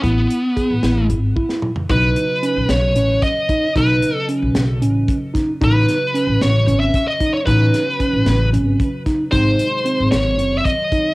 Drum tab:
HH |x-x-x-x-x-----|x-x-x-x-x-x-x-|x-x-x-x-x-x-x-|x-x-x-x-x-x-x-|
SD |------o----o--|------o---o---|------o-----o-|--o---o-------|
T2 |------------o-|--------------|--------------|--------------|
FT |-------------o|--------------|--------------|--------------|
BD |o---o-----o---|o---------o-o-|o---------o-o-|o---------o-o-|

HH |x-x-x-x-x-x-x-|x-x-x-x-x-x-x-|
SD |--o---o-----o-|------o-------|
T2 |--------------|--------------|
FT |--------------|--------------|
BD |o---o-----o-o-|o---------o-o-|